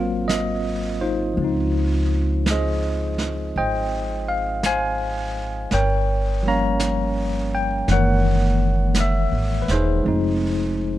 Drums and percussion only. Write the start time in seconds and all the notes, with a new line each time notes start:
0.29 brush sweep, snare, hi-hat pedal
1.38 brush sweep
2.46 brush sweep, snare, hi-hat pedal
3.18 snare
3.54 brush sweep
4.63 brush sweep, snare, hi-hat pedal
5.71 brush sweep, snare
6.80 brush sweep, snare, hi-hat pedal
7.88 brush sweep, snare
8.95 brush sweep, snare, hi-hat pedal
9.68 snare
10.03 brush sweep